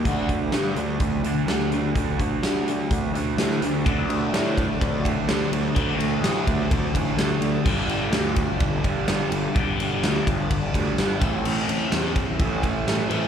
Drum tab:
CC |----------------|----------------|----------------|----------------|
RD |----------------|----------------|x-x-x-x-x-x-x-x-|x-x-x-x-x-x-x-x-|
HH |x-x-x-x-x-x-x-x-|x-x-x-x-x-x-x-x-|----------------|----------------|
SD |----o-------o---|----o-------oo--|----o-------o---|----o-------o---|
BD |o-o-----o-------|o-o-----o-------|o-----o-o-o-----|o-----o-o-o-----|

CC |x---------------|----------------|x---------------|
RD |--x-x-x-x-x-x-x-|x-x-x-x-x-x-x-x-|--x-x-x-x-x-x-x-|
HH |----------------|----------------|----------------|
SD |----o-------o---|----o-------o---|----o-------o---|
BD |o-----o-o-o-----|o-----o-o-o---o-|------o-o-o-----|